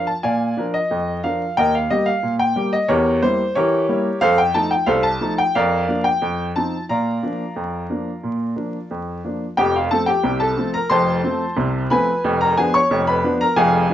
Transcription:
0.07 0.23 A5 medium
0.23 0.52 A#2 medium
0.23 0.70 D5 medium
0.23 0.70 F5 medium
0.23 0.63 G#5 medium
0.57 0.75 F3 soft
0.57 0.76 D4 soft
0.57 0.76 A#4 medium
0.74 1.21 D#5 medium
0.91 1.19 F2 medium
1.24 1.42 F3 soft
1.24 1.42 D4 soft
1.24 1.43 A#4 soft
1.24 1.55 F5 medium
1.57 1.85 D#2 medium
1.57 1.73 A#4 medium
1.57 1.73 D#5 medium
1.57 1.73 G5 loud
1.75 1.90 F5 medium
1.90 2.09 G3 soft
1.90 2.09 A#3 soft
1.90 2.09 G4 medium
1.90 2.07 D#5 medium
2.06 2.32 F5 medium
2.23 2.51 A#2 medium
2.39 2.71 G5 medium
2.56 2.74 G3 soft
2.56 2.74 A#3 medium
2.56 2.75 G4 medium
2.73 2.89 D#5 medium
2.88 3.17 E2 medium
2.88 3.20 G4 medium
2.88 3.20 A#4 medium
2.88 3.20 C#5 medium
3.22 3.41 G3 medium
3.22 3.41 A#3 medium
3.22 3.41 E4 medium
3.22 3.54 C5 medium
3.55 3.84 E3 medium
3.55 4.19 G4 medium
3.55 4.18 A#4 medium
3.55 4.18 C#5 loud
3.89 4.07 G3 soft
3.89 4.08 A#3 soft
3.89 4.08 E4 medium
4.21 4.50 F2 medium
4.21 4.38 A4 medium
4.21 4.37 C5 medium
4.21 4.38 F5 loud
4.38 4.55 G5 medium
4.54 4.73 F3 medium
4.54 4.73 A3 soft
4.54 4.73 D#4 medium
4.54 4.71 A5 loud
4.71 4.88 G5 medium
4.86 5.16 C2 medium
4.86 5.03 A4 medium
4.86 5.03 C5 medium
4.86 5.04 F5 loud
5.03 5.35 A5 loud
5.21 5.39 F3 medium
5.21 5.40 A3 medium
5.21 5.40 D#4 medium
5.38 5.55 G5 loud
5.55 5.83 F2 medium
5.55 6.02 A#4 medium
5.55 6.02 D5 medium
5.55 6.03 F5 loud
5.88 6.07 F3 soft
5.88 6.07 A#3 medium
5.88 6.07 D4 medium
6.04 6.45 G5 medium
6.22 6.50 F2 medium
6.56 6.74 F3 soft
6.56 6.75 C4 soft
6.56 6.75 D#4 soft
6.56 6.82 A5 medium
6.89 7.18 A#2 medium
6.89 8.88 D5 medium
6.89 8.88 F5 medium
6.89 8.87 A#5 medium
7.23 7.41 F3 soft
7.23 7.42 A#3 soft
7.23 7.42 D4 soft
7.56 7.85 F2 medium
7.90 8.08 F3 soft
7.90 8.09 A#3 soft
7.90 8.09 D4 soft
8.23 8.52 A#2 medium
8.56 8.75 F3 soft
8.56 8.75 A#3 soft
8.56 8.75 D4 soft
8.91 9.19 F2 medium
9.25 9.43 F3 soft
9.25 9.43 A#3 soft
9.25 9.43 D4 soft
9.57 9.86 F1 medium
9.57 9.86 F2 medium
9.57 9.74 G4 medium
9.57 9.74 G5 loud
9.76 9.91 F4 medium
9.76 9.92 F5 medium
9.91 10.10 F3 medium
9.91 10.10 A3 soft
9.91 10.10 C4 medium
9.91 10.07 A4 medium
9.91 10.08 A5 loud
10.06 10.39 G4 medium
10.06 10.39 G5 medium
10.23 10.52 C2 medium
10.23 10.52 C3 medium
10.40 10.72 A4 medium
10.40 10.72 A5 medium
10.57 10.75 F3 soft
10.57 10.76 A3 soft
10.57 10.76 C4 soft
10.74 10.90 A#4 medium
10.74 10.91 A#5 loud
10.89 11.19 F1 medium
10.89 11.19 F2 medium
10.89 11.87 C5 medium
10.89 11.87 A5 medium
10.89 11.70 C6 loud
11.24 11.42 F3 soft
11.24 11.42 A3 soft
11.24 11.43 C4 medium
11.56 11.85 C2 medium
11.56 11.85 C3 medium
11.90 12.09 F3 medium
11.90 12.09 A3 medium
11.90 12.10 C4 medium
11.90 12.37 B4 medium
11.90 12.37 G#5 medium
11.90 12.30 B5 loud
12.24 12.52 F1 medium
12.24 12.52 F2 medium
12.41 12.57 A#4 medium
12.41 12.57 A#5 loud
12.57 12.76 F3 medium
12.57 12.76 B3 medium
12.57 12.77 D4 medium
12.57 12.74 G#4 medium
12.57 12.74 G#5 loud
12.74 13.05 C#5 medium
12.74 13.00 C#6 loud
12.91 13.19 F1 medium
12.91 13.19 F2 medium
13.07 13.39 B4 medium
13.07 13.34 B5 loud
13.24 13.42 F3 medium
13.24 13.43 B3 medium
13.24 13.43 D4 medium
13.41 13.57 A#4 medium
13.41 13.57 A#5 loud
13.56 13.85 F1 medium
13.56 13.85 F2 loud
13.56 13.94 G#4 medium
13.56 13.94 F5 medium
13.56 13.94 G#5 loud
13.90 13.94 F3 medium
13.90 13.94 B3 medium
13.90 13.94 D4 medium

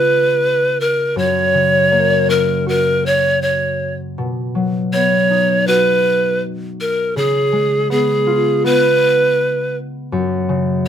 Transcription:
0.00 1.22 C#3 medium
0.00 1.22 G#3 soft
0.00 1.98 B3 soft
0.00 1.22 F4 soft
0.00 1.96 G#4 medium
0.00 0.82 B4 loud
0.81 1.20 A#4 medium
1.16 4.23 F#2 medium
1.16 2.31 C#5 medium
1.54 4.23 C#3 soft
1.92 4.24 A#3 soft
2.29 5.19 C#4 medium
2.29 2.67 A#4 medium
2.67 5.10 F#4 medium
2.67 3.08 A#4 medium
3.06 3.42 C#5 medium
3.42 3.95 C#5 medium
4.18 7.22 B2 medium
4.55 7.22 F#3 soft
4.93 7.90 B3 soft
4.93 5.69 C#5 medium
5.31 8.01 D#4 medium
5.67 8.12 F#4 medium
5.67 6.42 B4 medium
6.81 7.18 A#4 medium
7.16 10.17 C#3 medium
7.16 7.90 G#4 medium
7.53 10.17 G#3 medium
7.90 8.64 B3 soft
7.90 8.67 G#4 medium
8.27 10.18 F4 medium
8.64 10.86 B3 medium
8.64 9.76 B4 loud
10.12 10.88 F#2 medium
10.49 10.88 C#3 medium

